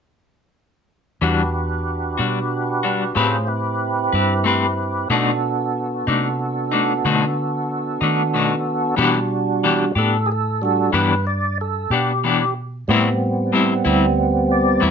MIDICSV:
0, 0, Header, 1, 4, 480
1, 0, Start_track
1, 0, Tempo, 647319
1, 907, Time_signature, 12, 3, 24, 8
1, 11054, End_track
2, 0, Start_track
2, 0, Title_t, "Tonewheel organ"
2, 0, Program_c, 0, 16
2, 900, Note_on_c, 0, 62, 47
2, 902, Note_on_c, 0, 71, 48
2, 904, Note_on_c, 0, 67, 48
2, 908, Note_on_c, 0, 66, 45
2, 2329, Note_off_c, 0, 62, 0
2, 2330, Note_off_c, 0, 71, 0
2, 2331, Note_off_c, 0, 67, 0
2, 2333, Note_off_c, 0, 66, 0
2, 2336, Note_on_c, 0, 65, 40
2, 2338, Note_on_c, 0, 68, 41
2, 2340, Note_on_c, 0, 61, 43
2, 2341, Note_on_c, 0, 72, 44
2, 2572, Note_on_c, 0, 64, 45
2, 2573, Note_on_c, 0, 60, 47
2, 2575, Note_on_c, 0, 67, 47
2, 2580, Note_on_c, 0, 71, 48
2, 2581, Note_off_c, 0, 65, 0
2, 2583, Note_off_c, 0, 61, 0
2, 2583, Note_off_c, 0, 68, 0
2, 2584, Note_off_c, 0, 72, 0
2, 3768, Note_off_c, 0, 60, 0
2, 3768, Note_off_c, 0, 64, 0
2, 3769, Note_off_c, 0, 67, 0
2, 3772, Note_off_c, 0, 71, 0
2, 3780, Note_on_c, 0, 66, 47
2, 3782, Note_on_c, 0, 62, 46
2, 3782, Note_on_c, 0, 69, 47
2, 3783, Note_on_c, 0, 59, 51
2, 6636, Note_off_c, 0, 66, 0
2, 6637, Note_off_c, 0, 62, 0
2, 6637, Note_off_c, 0, 69, 0
2, 6638, Note_off_c, 0, 59, 0
2, 6658, Note_on_c, 0, 55, 45
2, 6661, Note_on_c, 0, 62, 42
2, 6661, Note_on_c, 0, 66, 51
2, 7354, Note_off_c, 0, 55, 0
2, 7356, Note_off_c, 0, 62, 0
2, 7356, Note_off_c, 0, 66, 0
2, 7404, Note_on_c, 0, 69, 71
2, 7609, Note_on_c, 0, 68, 54
2, 7630, Note_off_c, 0, 69, 0
2, 7636, Note_off_c, 0, 68, 0
2, 7651, Note_on_c, 0, 69, 78
2, 7872, Note_on_c, 0, 55, 41
2, 7873, Note_off_c, 0, 69, 0
2, 7882, Note_on_c, 0, 66, 45
2, 7883, Note_on_c, 0, 62, 38
2, 7897, Note_on_c, 0, 69, 71
2, 8087, Note_off_c, 0, 55, 0
2, 8093, Note_off_c, 0, 62, 0
2, 8093, Note_off_c, 0, 66, 0
2, 8115, Note_on_c, 0, 71, 68
2, 8116, Note_off_c, 0, 69, 0
2, 8345, Note_off_c, 0, 71, 0
2, 8355, Note_on_c, 0, 74, 61
2, 8585, Note_off_c, 0, 74, 0
2, 8610, Note_on_c, 0, 69, 67
2, 8833, Note_off_c, 0, 69, 0
2, 8837, Note_on_c, 0, 67, 69
2, 9300, Note_off_c, 0, 67, 0
2, 9550, Note_on_c, 0, 55, 45
2, 9558, Note_on_c, 0, 60, 56
2, 9562, Note_on_c, 0, 59, 43
2, 10763, Note_on_c, 0, 74, 82
2, 11054, Note_off_c, 0, 55, 0
2, 11054, Note_off_c, 0, 59, 0
2, 11054, Note_off_c, 0, 60, 0
2, 11054, Note_off_c, 0, 74, 0
2, 11054, End_track
3, 0, Start_track
3, 0, Title_t, "Clean electric guitar"
3, 0, Program_c, 1, 27
3, 901, Note_on_c, 1, 52, 61
3, 907, Note_on_c, 1, 55, 59
3, 910, Note_on_c, 1, 62, 58
3, 912, Note_on_c, 1, 66, 59
3, 1048, Note_off_c, 1, 52, 0
3, 1051, Note_off_c, 1, 55, 0
3, 1052, Note_off_c, 1, 62, 0
3, 1053, Note_off_c, 1, 66, 0
3, 1613, Note_on_c, 1, 66, 38
3, 1621, Note_on_c, 1, 62, 38
3, 1633, Note_on_c, 1, 55, 35
3, 1764, Note_off_c, 1, 66, 0
3, 1768, Note_off_c, 1, 62, 0
3, 1774, Note_off_c, 1, 55, 0
3, 2100, Note_on_c, 1, 66, 40
3, 2107, Note_on_c, 1, 62, 40
3, 2114, Note_on_c, 1, 55, 33
3, 2247, Note_off_c, 1, 66, 0
3, 2251, Note_off_c, 1, 62, 0
3, 2254, Note_off_c, 1, 55, 0
3, 2337, Note_on_c, 1, 57, 53
3, 2343, Note_on_c, 1, 67, 61
3, 2346, Note_on_c, 1, 60, 59
3, 2350, Note_on_c, 1, 71, 70
3, 2486, Note_off_c, 1, 57, 0
3, 2489, Note_off_c, 1, 67, 0
3, 2490, Note_off_c, 1, 60, 0
3, 2493, Note_off_c, 1, 71, 0
3, 3059, Note_on_c, 1, 71, 41
3, 3073, Note_on_c, 1, 67, 34
3, 3076, Note_on_c, 1, 60, 33
3, 3207, Note_off_c, 1, 71, 0
3, 3214, Note_off_c, 1, 67, 0
3, 3216, Note_off_c, 1, 60, 0
3, 3293, Note_on_c, 1, 57, 46
3, 3304, Note_on_c, 1, 60, 53
3, 3308, Note_on_c, 1, 67, 54
3, 3317, Note_on_c, 1, 71, 52
3, 3444, Note_off_c, 1, 57, 0
3, 3450, Note_off_c, 1, 60, 0
3, 3452, Note_off_c, 1, 67, 0
3, 3456, Note_off_c, 1, 71, 0
3, 3782, Note_on_c, 1, 47, 57
3, 3785, Note_on_c, 1, 57, 61
3, 3791, Note_on_c, 1, 62, 70
3, 3795, Note_on_c, 1, 63, 69
3, 3929, Note_off_c, 1, 47, 0
3, 3930, Note_off_c, 1, 57, 0
3, 3933, Note_off_c, 1, 62, 0
3, 3935, Note_off_c, 1, 63, 0
3, 4502, Note_on_c, 1, 63, 44
3, 4510, Note_on_c, 1, 62, 44
3, 4518, Note_on_c, 1, 57, 37
3, 4649, Note_off_c, 1, 63, 0
3, 4653, Note_off_c, 1, 62, 0
3, 4657, Note_off_c, 1, 57, 0
3, 4980, Note_on_c, 1, 63, 43
3, 4989, Note_on_c, 1, 62, 41
3, 4997, Note_on_c, 1, 57, 37
3, 5128, Note_off_c, 1, 63, 0
3, 5133, Note_off_c, 1, 62, 0
3, 5136, Note_off_c, 1, 57, 0
3, 5227, Note_on_c, 1, 47, 61
3, 5232, Note_on_c, 1, 57, 69
3, 5232, Note_on_c, 1, 62, 65
3, 5236, Note_on_c, 1, 63, 64
3, 5372, Note_off_c, 1, 47, 0
3, 5374, Note_off_c, 1, 57, 0
3, 5374, Note_off_c, 1, 62, 0
3, 5376, Note_off_c, 1, 63, 0
3, 5939, Note_on_c, 1, 63, 41
3, 5954, Note_on_c, 1, 62, 36
3, 5960, Note_on_c, 1, 57, 32
3, 6088, Note_off_c, 1, 63, 0
3, 6095, Note_off_c, 1, 62, 0
3, 6098, Note_off_c, 1, 57, 0
3, 6183, Note_on_c, 1, 47, 50
3, 6187, Note_on_c, 1, 57, 47
3, 6194, Note_on_c, 1, 62, 50
3, 6198, Note_on_c, 1, 63, 55
3, 6330, Note_off_c, 1, 47, 0
3, 6332, Note_off_c, 1, 57, 0
3, 6335, Note_off_c, 1, 62, 0
3, 6337, Note_off_c, 1, 63, 0
3, 6649, Note_on_c, 1, 52, 71
3, 6658, Note_on_c, 1, 59, 81
3, 6660, Note_on_c, 1, 62, 79
3, 6665, Note_on_c, 1, 67, 75
3, 6803, Note_off_c, 1, 52, 0
3, 6807, Note_off_c, 1, 59, 0
3, 6809, Note_off_c, 1, 62, 0
3, 6811, Note_off_c, 1, 67, 0
3, 7147, Note_on_c, 1, 52, 58
3, 7150, Note_on_c, 1, 59, 58
3, 7156, Note_on_c, 1, 62, 62
3, 7162, Note_on_c, 1, 67, 66
3, 7292, Note_off_c, 1, 52, 0
3, 7294, Note_off_c, 1, 59, 0
3, 7296, Note_off_c, 1, 62, 0
3, 7300, Note_off_c, 1, 67, 0
3, 7381, Note_on_c, 1, 67, 49
3, 7391, Note_on_c, 1, 62, 39
3, 7401, Note_on_c, 1, 59, 38
3, 7529, Note_off_c, 1, 67, 0
3, 7534, Note_off_c, 1, 62, 0
3, 7539, Note_off_c, 1, 59, 0
3, 8103, Note_on_c, 1, 52, 62
3, 8112, Note_on_c, 1, 59, 63
3, 8116, Note_on_c, 1, 67, 65
3, 8117, Note_on_c, 1, 62, 71
3, 8250, Note_off_c, 1, 52, 0
3, 8255, Note_off_c, 1, 59, 0
3, 8257, Note_off_c, 1, 62, 0
3, 8257, Note_off_c, 1, 67, 0
3, 8833, Note_on_c, 1, 67, 42
3, 8844, Note_on_c, 1, 62, 45
3, 8850, Note_on_c, 1, 59, 37
3, 8976, Note_off_c, 1, 67, 0
3, 8981, Note_off_c, 1, 62, 0
3, 8984, Note_off_c, 1, 59, 0
3, 9077, Note_on_c, 1, 52, 58
3, 9081, Note_on_c, 1, 59, 55
3, 9091, Note_on_c, 1, 62, 52
3, 9092, Note_on_c, 1, 67, 54
3, 9217, Note_off_c, 1, 52, 0
3, 9220, Note_off_c, 1, 59, 0
3, 9225, Note_off_c, 1, 62, 0
3, 9225, Note_off_c, 1, 67, 0
3, 9559, Note_on_c, 1, 45, 74
3, 9568, Note_on_c, 1, 55, 81
3, 9569, Note_on_c, 1, 60, 77
3, 9570, Note_on_c, 1, 64, 88
3, 9699, Note_off_c, 1, 45, 0
3, 9703, Note_off_c, 1, 55, 0
3, 9704, Note_off_c, 1, 60, 0
3, 9704, Note_off_c, 1, 64, 0
3, 10029, Note_on_c, 1, 45, 60
3, 10035, Note_on_c, 1, 55, 63
3, 10039, Note_on_c, 1, 60, 61
3, 10048, Note_on_c, 1, 64, 62
3, 10174, Note_off_c, 1, 45, 0
3, 10177, Note_off_c, 1, 55, 0
3, 10179, Note_off_c, 1, 60, 0
3, 10183, Note_off_c, 1, 64, 0
3, 10268, Note_on_c, 1, 64, 55
3, 10278, Note_on_c, 1, 60, 50
3, 10287, Note_on_c, 1, 55, 43
3, 10413, Note_off_c, 1, 64, 0
3, 10419, Note_off_c, 1, 60, 0
3, 10423, Note_off_c, 1, 55, 0
3, 10978, Note_on_c, 1, 45, 68
3, 10988, Note_on_c, 1, 55, 65
3, 10988, Note_on_c, 1, 60, 67
3, 10993, Note_on_c, 1, 64, 79
3, 11054, Note_off_c, 1, 45, 0
3, 11054, Note_off_c, 1, 55, 0
3, 11054, Note_off_c, 1, 60, 0
3, 11054, Note_off_c, 1, 64, 0
3, 11054, End_track
4, 0, Start_track
4, 0, Title_t, "Fingered electric bass"
4, 0, Program_c, 2, 33
4, 903, Note_on_c, 2, 40, 57
4, 1603, Note_off_c, 2, 40, 0
4, 1625, Note_on_c, 2, 47, 66
4, 2324, Note_off_c, 2, 47, 0
4, 2343, Note_on_c, 2, 45, 57
4, 3044, Note_off_c, 2, 45, 0
4, 3064, Note_on_c, 2, 43, 67
4, 3764, Note_off_c, 2, 43, 0
4, 3780, Note_on_c, 2, 47, 57
4, 4482, Note_off_c, 2, 47, 0
4, 4504, Note_on_c, 2, 48, 68
4, 5205, Note_off_c, 2, 48, 0
4, 5226, Note_on_c, 2, 50, 60
4, 5926, Note_off_c, 2, 50, 0
4, 5944, Note_on_c, 2, 51, 64
4, 6645, Note_off_c, 2, 51, 0
4, 6660, Note_on_c, 2, 47, 71
4, 7363, Note_off_c, 2, 47, 0
4, 7384, Note_on_c, 2, 45, 76
4, 8085, Note_off_c, 2, 45, 0
4, 8108, Note_on_c, 2, 43, 73
4, 8807, Note_off_c, 2, 43, 0
4, 8827, Note_on_c, 2, 47, 79
4, 9527, Note_off_c, 2, 47, 0
4, 9554, Note_on_c, 2, 45, 70
4, 10251, Note_off_c, 2, 45, 0
4, 10272, Note_on_c, 2, 38, 77
4, 10970, Note_off_c, 2, 38, 0
4, 10994, Note_on_c, 2, 40, 69
4, 11054, Note_off_c, 2, 40, 0
4, 11054, End_track
0, 0, End_of_file